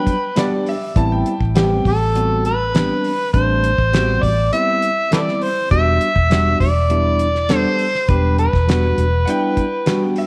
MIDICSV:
0, 0, Header, 1, 7, 480
1, 0, Start_track
1, 0, Key_signature, 1, "minor"
1, 0, Tempo, 594059
1, 773, Time_signature, 4, 2, 24, 8
1, 8295, End_track
2, 0, Start_track
2, 0, Title_t, "Upright piano"
2, 0, Program_c, 0, 0
2, 0, Note_on_c, 0, 79, 88
2, 288, Note_off_c, 0, 79, 0
2, 309, Note_on_c, 0, 74, 89
2, 534, Note_off_c, 0, 74, 0
2, 555, Note_on_c, 0, 76, 75
2, 777, Note_off_c, 0, 76, 0
2, 785, Note_on_c, 0, 81, 83
2, 891, Note_off_c, 0, 81, 0
2, 906, Note_on_c, 0, 79, 72
2, 1249, Note_off_c, 0, 79, 0
2, 1268, Note_on_c, 0, 79, 79
2, 1494, Note_off_c, 0, 79, 0
2, 7477, Note_on_c, 0, 78, 65
2, 7503, Note_off_c, 0, 78, 0
2, 7512, Note_on_c, 0, 79, 92
2, 8202, Note_off_c, 0, 79, 0
2, 8228, Note_on_c, 0, 76, 71
2, 8295, Note_off_c, 0, 76, 0
2, 8295, End_track
3, 0, Start_track
3, 0, Title_t, "Harmonica"
3, 0, Program_c, 1, 22
3, 0, Note_on_c, 1, 71, 91
3, 510, Note_off_c, 1, 71, 0
3, 1508, Note_on_c, 1, 69, 85
3, 1949, Note_off_c, 1, 69, 0
3, 1985, Note_on_c, 1, 71, 94
3, 2668, Note_off_c, 1, 71, 0
3, 2696, Note_on_c, 1, 72, 99
3, 3416, Note_on_c, 1, 74, 92
3, 3428, Note_off_c, 1, 72, 0
3, 3656, Note_off_c, 1, 74, 0
3, 3659, Note_on_c, 1, 76, 103
3, 4105, Note_off_c, 1, 76, 0
3, 4145, Note_on_c, 1, 69, 59
3, 4145, Note_on_c, 1, 71, 59
3, 4145, Note_on_c, 1, 74, 85
3, 4196, Note_off_c, 1, 71, 0
3, 4203, Note_off_c, 1, 69, 0
3, 4386, Note_on_c, 1, 72, 89
3, 4398, Note_off_c, 1, 74, 0
3, 4610, Note_off_c, 1, 72, 0
3, 4615, Note_on_c, 1, 76, 107
3, 5303, Note_off_c, 1, 76, 0
3, 5334, Note_on_c, 1, 74, 99
3, 6118, Note_off_c, 1, 74, 0
3, 6118, Note_on_c, 1, 72, 99
3, 6541, Note_on_c, 1, 71, 93
3, 6553, Note_off_c, 1, 72, 0
3, 6778, Note_off_c, 1, 71, 0
3, 6783, Note_on_c, 1, 71, 84
3, 8186, Note_off_c, 1, 71, 0
3, 8295, End_track
4, 0, Start_track
4, 0, Title_t, "Clean electric guitar"
4, 0, Program_c, 2, 27
4, 289, Note_on_c, 2, 55, 79
4, 294, Note_on_c, 2, 59, 74
4, 298, Note_on_c, 2, 62, 85
4, 303, Note_on_c, 2, 66, 89
4, 435, Note_off_c, 2, 55, 0
4, 437, Note_off_c, 2, 59, 0
4, 440, Note_off_c, 2, 62, 0
4, 442, Note_off_c, 2, 66, 0
4, 1254, Note_on_c, 2, 52, 85
4, 1257, Note_on_c, 2, 59, 80
4, 1261, Note_on_c, 2, 60, 89
4, 1264, Note_on_c, 2, 67, 82
4, 1398, Note_off_c, 2, 52, 0
4, 1400, Note_off_c, 2, 59, 0
4, 1402, Note_off_c, 2, 60, 0
4, 1403, Note_off_c, 2, 67, 0
4, 2216, Note_on_c, 2, 52, 68
4, 2220, Note_on_c, 2, 59, 70
4, 2225, Note_on_c, 2, 60, 69
4, 2229, Note_on_c, 2, 67, 76
4, 2359, Note_off_c, 2, 52, 0
4, 2361, Note_off_c, 2, 59, 0
4, 2364, Note_off_c, 2, 60, 0
4, 2366, Note_off_c, 2, 67, 0
4, 3175, Note_on_c, 2, 52, 78
4, 3178, Note_on_c, 2, 59, 82
4, 3183, Note_on_c, 2, 60, 88
4, 3186, Note_on_c, 2, 67, 91
4, 3319, Note_off_c, 2, 52, 0
4, 3320, Note_off_c, 2, 59, 0
4, 3323, Note_off_c, 2, 60, 0
4, 3325, Note_off_c, 2, 67, 0
4, 4134, Note_on_c, 2, 52, 72
4, 4139, Note_on_c, 2, 59, 73
4, 4143, Note_on_c, 2, 60, 70
4, 4145, Note_on_c, 2, 67, 76
4, 4278, Note_off_c, 2, 52, 0
4, 4281, Note_off_c, 2, 59, 0
4, 4283, Note_off_c, 2, 60, 0
4, 4284, Note_off_c, 2, 67, 0
4, 5093, Note_on_c, 2, 55, 76
4, 5098, Note_on_c, 2, 59, 75
4, 5102, Note_on_c, 2, 62, 85
4, 5105, Note_on_c, 2, 66, 84
4, 5238, Note_off_c, 2, 55, 0
4, 5241, Note_off_c, 2, 59, 0
4, 5243, Note_off_c, 2, 62, 0
4, 5244, Note_off_c, 2, 66, 0
4, 6051, Note_on_c, 2, 55, 78
4, 6055, Note_on_c, 2, 59, 80
4, 6060, Note_on_c, 2, 62, 78
4, 6063, Note_on_c, 2, 66, 94
4, 6197, Note_off_c, 2, 55, 0
4, 6199, Note_off_c, 2, 59, 0
4, 6202, Note_off_c, 2, 62, 0
4, 6203, Note_off_c, 2, 66, 0
4, 7014, Note_on_c, 2, 55, 72
4, 7019, Note_on_c, 2, 59, 82
4, 7022, Note_on_c, 2, 62, 79
4, 7025, Note_on_c, 2, 66, 84
4, 7158, Note_off_c, 2, 55, 0
4, 7161, Note_off_c, 2, 59, 0
4, 7163, Note_off_c, 2, 62, 0
4, 7164, Note_off_c, 2, 66, 0
4, 7970, Note_on_c, 2, 55, 80
4, 7976, Note_on_c, 2, 59, 76
4, 7978, Note_on_c, 2, 62, 77
4, 7983, Note_on_c, 2, 66, 89
4, 8117, Note_off_c, 2, 55, 0
4, 8120, Note_off_c, 2, 59, 0
4, 8120, Note_off_c, 2, 62, 0
4, 8123, Note_off_c, 2, 66, 0
4, 8295, End_track
5, 0, Start_track
5, 0, Title_t, "Tine electric piano"
5, 0, Program_c, 3, 4
5, 0, Note_on_c, 3, 54, 101
5, 0, Note_on_c, 3, 55, 85
5, 0, Note_on_c, 3, 59, 81
5, 0, Note_on_c, 3, 62, 80
5, 103, Note_off_c, 3, 55, 0
5, 105, Note_off_c, 3, 59, 0
5, 107, Note_off_c, 3, 62, 0
5, 110, Note_off_c, 3, 54, 0
5, 288, Note_on_c, 3, 55, 81
5, 295, Note_on_c, 3, 59, 75
5, 295, Note_on_c, 3, 62, 81
5, 303, Note_on_c, 3, 67, 91
5, 583, Note_off_c, 3, 55, 0
5, 587, Note_off_c, 3, 59, 0
5, 587, Note_off_c, 3, 62, 0
5, 591, Note_off_c, 3, 67, 0
5, 775, Note_on_c, 3, 55, 85
5, 779, Note_on_c, 3, 59, 80
5, 784, Note_on_c, 3, 60, 80
5, 786, Note_on_c, 3, 64, 103
5, 1067, Note_off_c, 3, 55, 0
5, 1069, Note_off_c, 3, 59, 0
5, 1071, Note_off_c, 3, 60, 0
5, 1073, Note_off_c, 3, 64, 0
5, 1253, Note_on_c, 3, 55, 92
5, 1260, Note_on_c, 3, 59, 85
5, 1263, Note_on_c, 3, 60, 87
5, 1268, Note_on_c, 3, 67, 98
5, 1546, Note_off_c, 3, 55, 0
5, 1550, Note_off_c, 3, 59, 0
5, 1551, Note_off_c, 3, 60, 0
5, 1554, Note_off_c, 3, 67, 0
5, 1733, Note_on_c, 3, 55, 75
5, 1738, Note_on_c, 3, 59, 63
5, 1742, Note_on_c, 3, 60, 68
5, 1744, Note_on_c, 3, 66, 80
5, 2027, Note_off_c, 3, 55, 0
5, 2029, Note_off_c, 3, 59, 0
5, 2031, Note_off_c, 3, 60, 0
5, 2032, Note_off_c, 3, 66, 0
5, 2214, Note_on_c, 3, 55, 67
5, 2218, Note_on_c, 3, 59, 67
5, 2224, Note_on_c, 3, 60, 66
5, 2225, Note_on_c, 3, 62, 81
5, 2507, Note_off_c, 3, 55, 0
5, 2509, Note_off_c, 3, 59, 0
5, 2512, Note_off_c, 3, 60, 0
5, 2513, Note_off_c, 3, 62, 0
5, 2695, Note_on_c, 3, 55, 74
5, 2700, Note_on_c, 3, 57, 72
5, 2704, Note_on_c, 3, 60, 67
5, 2706, Note_on_c, 3, 62, 90
5, 2988, Note_off_c, 3, 55, 0
5, 2990, Note_off_c, 3, 57, 0
5, 2992, Note_off_c, 3, 60, 0
5, 2993, Note_off_c, 3, 62, 0
5, 3169, Note_on_c, 3, 55, 75
5, 3176, Note_on_c, 3, 59, 70
5, 3178, Note_on_c, 3, 60, 72
5, 3183, Note_on_c, 3, 66, 88
5, 3465, Note_off_c, 3, 55, 0
5, 3468, Note_off_c, 3, 59, 0
5, 3469, Note_off_c, 3, 60, 0
5, 3472, Note_off_c, 3, 66, 0
5, 3654, Note_on_c, 3, 55, 74
5, 3660, Note_on_c, 3, 59, 65
5, 3663, Note_on_c, 3, 60, 70
5, 3669, Note_on_c, 3, 64, 82
5, 3947, Note_off_c, 3, 55, 0
5, 3950, Note_off_c, 3, 59, 0
5, 3952, Note_off_c, 3, 60, 0
5, 3955, Note_off_c, 3, 64, 0
5, 4128, Note_on_c, 3, 55, 78
5, 4134, Note_on_c, 3, 59, 65
5, 4138, Note_on_c, 3, 60, 67
5, 4142, Note_on_c, 3, 64, 80
5, 4424, Note_off_c, 3, 55, 0
5, 4427, Note_off_c, 3, 59, 0
5, 4429, Note_off_c, 3, 60, 0
5, 4431, Note_off_c, 3, 64, 0
5, 4613, Note_on_c, 3, 55, 74
5, 4615, Note_on_c, 3, 59, 70
5, 4619, Note_on_c, 3, 62, 69
5, 4625, Note_on_c, 3, 66, 84
5, 4906, Note_off_c, 3, 55, 0
5, 4908, Note_off_c, 3, 59, 0
5, 4909, Note_off_c, 3, 62, 0
5, 4913, Note_off_c, 3, 66, 0
5, 5092, Note_on_c, 3, 55, 79
5, 5094, Note_on_c, 3, 59, 73
5, 5103, Note_on_c, 3, 62, 73
5, 5105, Note_on_c, 3, 66, 86
5, 5386, Note_off_c, 3, 55, 0
5, 5387, Note_off_c, 3, 59, 0
5, 5391, Note_off_c, 3, 62, 0
5, 5393, Note_off_c, 3, 66, 0
5, 5571, Note_on_c, 3, 55, 78
5, 5577, Note_on_c, 3, 59, 70
5, 5580, Note_on_c, 3, 62, 70
5, 5584, Note_on_c, 3, 64, 86
5, 5866, Note_off_c, 3, 55, 0
5, 5869, Note_off_c, 3, 59, 0
5, 5870, Note_off_c, 3, 62, 0
5, 5872, Note_off_c, 3, 64, 0
5, 6051, Note_on_c, 3, 55, 86
5, 6057, Note_on_c, 3, 59, 76
5, 6059, Note_on_c, 3, 62, 74
5, 6063, Note_on_c, 3, 69, 100
5, 6346, Note_off_c, 3, 55, 0
5, 6349, Note_off_c, 3, 59, 0
5, 6350, Note_off_c, 3, 62, 0
5, 6351, Note_off_c, 3, 69, 0
5, 6533, Note_on_c, 3, 55, 76
5, 6539, Note_on_c, 3, 59, 70
5, 6542, Note_on_c, 3, 62, 71
5, 6547, Note_on_c, 3, 67, 86
5, 6827, Note_off_c, 3, 55, 0
5, 6829, Note_off_c, 3, 59, 0
5, 6831, Note_off_c, 3, 62, 0
5, 6833, Note_off_c, 3, 67, 0
5, 7006, Note_on_c, 3, 55, 74
5, 7013, Note_on_c, 3, 59, 68
5, 7015, Note_on_c, 3, 62, 70
5, 7021, Note_on_c, 3, 66, 88
5, 7303, Note_off_c, 3, 55, 0
5, 7306, Note_off_c, 3, 59, 0
5, 7307, Note_off_c, 3, 62, 0
5, 7310, Note_off_c, 3, 66, 0
5, 7490, Note_on_c, 3, 55, 90
5, 7495, Note_on_c, 3, 59, 75
5, 7500, Note_on_c, 3, 62, 84
5, 7506, Note_on_c, 3, 64, 97
5, 7785, Note_off_c, 3, 55, 0
5, 7787, Note_off_c, 3, 59, 0
5, 7790, Note_off_c, 3, 62, 0
5, 7793, Note_off_c, 3, 64, 0
5, 7967, Note_on_c, 3, 55, 87
5, 7973, Note_on_c, 3, 59, 81
5, 7975, Note_on_c, 3, 62, 79
5, 7980, Note_on_c, 3, 66, 93
5, 8264, Note_off_c, 3, 55, 0
5, 8266, Note_off_c, 3, 59, 0
5, 8268, Note_off_c, 3, 62, 0
5, 8270, Note_off_c, 3, 66, 0
5, 8295, End_track
6, 0, Start_track
6, 0, Title_t, "Fingered electric bass"
6, 0, Program_c, 4, 33
6, 775, Note_on_c, 4, 33, 91
6, 985, Note_off_c, 4, 33, 0
6, 1134, Note_on_c, 4, 33, 77
6, 1449, Note_off_c, 4, 33, 0
6, 1497, Note_on_c, 4, 33, 82
6, 2337, Note_off_c, 4, 33, 0
6, 2697, Note_on_c, 4, 33, 99
6, 3012, Note_off_c, 4, 33, 0
6, 3057, Note_on_c, 4, 33, 90
6, 3371, Note_off_c, 4, 33, 0
6, 3417, Note_on_c, 4, 33, 91
6, 3626, Note_off_c, 4, 33, 0
6, 4615, Note_on_c, 4, 28, 93
6, 4825, Note_off_c, 4, 28, 0
6, 4974, Note_on_c, 4, 28, 78
6, 5290, Note_off_c, 4, 28, 0
6, 5336, Note_on_c, 4, 28, 82
6, 6176, Note_off_c, 4, 28, 0
6, 6533, Note_on_c, 4, 28, 98
6, 6849, Note_off_c, 4, 28, 0
6, 6894, Note_on_c, 4, 28, 88
6, 7210, Note_off_c, 4, 28, 0
6, 7254, Note_on_c, 4, 28, 92
6, 7465, Note_off_c, 4, 28, 0
6, 8295, End_track
7, 0, Start_track
7, 0, Title_t, "Drums"
7, 54, Note_on_c, 9, 36, 71
7, 55, Note_on_c, 9, 42, 56
7, 134, Note_off_c, 9, 36, 0
7, 136, Note_off_c, 9, 42, 0
7, 293, Note_on_c, 9, 42, 81
7, 302, Note_on_c, 9, 38, 108
7, 374, Note_off_c, 9, 42, 0
7, 383, Note_off_c, 9, 38, 0
7, 536, Note_on_c, 9, 46, 71
7, 617, Note_off_c, 9, 46, 0
7, 775, Note_on_c, 9, 36, 110
7, 776, Note_on_c, 9, 42, 81
7, 856, Note_off_c, 9, 36, 0
7, 856, Note_off_c, 9, 42, 0
7, 1017, Note_on_c, 9, 42, 60
7, 1098, Note_off_c, 9, 42, 0
7, 1135, Note_on_c, 9, 36, 76
7, 1216, Note_off_c, 9, 36, 0
7, 1257, Note_on_c, 9, 42, 82
7, 1266, Note_on_c, 9, 38, 105
7, 1338, Note_off_c, 9, 42, 0
7, 1347, Note_off_c, 9, 38, 0
7, 1497, Note_on_c, 9, 36, 71
7, 1500, Note_on_c, 9, 46, 70
7, 1578, Note_off_c, 9, 36, 0
7, 1580, Note_off_c, 9, 46, 0
7, 1740, Note_on_c, 9, 42, 77
7, 1821, Note_off_c, 9, 42, 0
7, 1979, Note_on_c, 9, 42, 51
7, 2060, Note_off_c, 9, 42, 0
7, 2219, Note_on_c, 9, 42, 76
7, 2228, Note_on_c, 9, 38, 110
7, 2300, Note_off_c, 9, 42, 0
7, 2308, Note_off_c, 9, 38, 0
7, 2459, Note_on_c, 9, 46, 77
7, 2540, Note_off_c, 9, 46, 0
7, 2698, Note_on_c, 9, 36, 99
7, 2699, Note_on_c, 9, 42, 69
7, 2778, Note_off_c, 9, 36, 0
7, 2780, Note_off_c, 9, 42, 0
7, 2938, Note_on_c, 9, 42, 59
7, 3019, Note_off_c, 9, 42, 0
7, 3058, Note_on_c, 9, 36, 79
7, 3138, Note_off_c, 9, 36, 0
7, 3179, Note_on_c, 9, 42, 76
7, 3188, Note_on_c, 9, 38, 102
7, 3260, Note_off_c, 9, 42, 0
7, 3269, Note_off_c, 9, 38, 0
7, 3417, Note_on_c, 9, 36, 68
7, 3419, Note_on_c, 9, 46, 65
7, 3498, Note_off_c, 9, 36, 0
7, 3500, Note_off_c, 9, 46, 0
7, 3658, Note_on_c, 9, 42, 82
7, 3739, Note_off_c, 9, 42, 0
7, 3897, Note_on_c, 9, 42, 55
7, 3978, Note_off_c, 9, 42, 0
7, 4136, Note_on_c, 9, 42, 85
7, 4145, Note_on_c, 9, 38, 117
7, 4217, Note_off_c, 9, 42, 0
7, 4225, Note_off_c, 9, 38, 0
7, 4269, Note_on_c, 9, 38, 32
7, 4349, Note_off_c, 9, 38, 0
7, 4376, Note_on_c, 9, 46, 77
7, 4457, Note_off_c, 9, 46, 0
7, 4615, Note_on_c, 9, 36, 101
7, 4616, Note_on_c, 9, 42, 76
7, 4696, Note_off_c, 9, 36, 0
7, 4697, Note_off_c, 9, 42, 0
7, 4855, Note_on_c, 9, 42, 64
7, 4936, Note_off_c, 9, 42, 0
7, 4976, Note_on_c, 9, 36, 80
7, 5057, Note_off_c, 9, 36, 0
7, 5098, Note_on_c, 9, 42, 82
7, 5107, Note_on_c, 9, 38, 108
7, 5179, Note_off_c, 9, 42, 0
7, 5188, Note_off_c, 9, 38, 0
7, 5336, Note_on_c, 9, 36, 71
7, 5338, Note_on_c, 9, 46, 66
7, 5416, Note_off_c, 9, 36, 0
7, 5419, Note_off_c, 9, 46, 0
7, 5574, Note_on_c, 9, 42, 83
7, 5655, Note_off_c, 9, 42, 0
7, 5812, Note_on_c, 9, 42, 57
7, 5893, Note_off_c, 9, 42, 0
7, 5941, Note_on_c, 9, 38, 35
7, 6021, Note_off_c, 9, 38, 0
7, 6051, Note_on_c, 9, 42, 83
7, 6060, Note_on_c, 9, 38, 106
7, 6132, Note_off_c, 9, 42, 0
7, 6141, Note_off_c, 9, 38, 0
7, 6290, Note_on_c, 9, 46, 76
7, 6371, Note_off_c, 9, 46, 0
7, 6422, Note_on_c, 9, 38, 32
7, 6503, Note_off_c, 9, 38, 0
7, 6533, Note_on_c, 9, 42, 77
7, 6534, Note_on_c, 9, 36, 111
7, 6614, Note_off_c, 9, 42, 0
7, 6615, Note_off_c, 9, 36, 0
7, 6774, Note_on_c, 9, 42, 53
7, 6855, Note_off_c, 9, 42, 0
7, 6895, Note_on_c, 9, 36, 79
7, 6905, Note_on_c, 9, 38, 34
7, 6976, Note_off_c, 9, 36, 0
7, 6986, Note_off_c, 9, 38, 0
7, 7018, Note_on_c, 9, 42, 76
7, 7027, Note_on_c, 9, 38, 101
7, 7099, Note_off_c, 9, 42, 0
7, 7108, Note_off_c, 9, 38, 0
7, 7255, Note_on_c, 9, 42, 58
7, 7336, Note_off_c, 9, 42, 0
7, 7494, Note_on_c, 9, 42, 81
7, 7575, Note_off_c, 9, 42, 0
7, 7732, Note_on_c, 9, 42, 54
7, 7733, Note_on_c, 9, 36, 69
7, 7813, Note_off_c, 9, 36, 0
7, 7813, Note_off_c, 9, 42, 0
7, 7968, Note_on_c, 9, 42, 81
7, 7977, Note_on_c, 9, 38, 112
7, 8049, Note_off_c, 9, 42, 0
7, 8058, Note_off_c, 9, 38, 0
7, 8207, Note_on_c, 9, 46, 76
7, 8288, Note_off_c, 9, 46, 0
7, 8295, End_track
0, 0, End_of_file